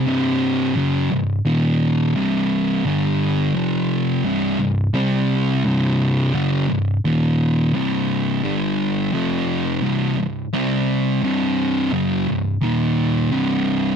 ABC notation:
X:1
M:4/4
L:1/8
Q:1/4=86
K:Cm
V:1 name="Distorted electric guitar" clef=bass
[C,,G,,C,]2 [^F,,_D,^F,] [C,,G,,] [E,,B,,E,]2 [C,,G,,C,]2 | [G,,D,G,]2 [F,,C,F,]2 [C,,G,,C,] [C,,G,,] [C,G,C]2 | [C,,G,,C,]2 [^F,,_D,^F,] [C,,G,,] [E,,B,,E,]2 [C,,G,,C,]2 | [G,,D,G,]2 [F,,C,F,]2 [C,,G,,C,] [C,,G,,] [C,G,C]2 |
[C,,G,,C,]2 [^F,,_D,^F,] [C,,G,,] [E,,B,,E,]2 [C,,G,,C,]2 |]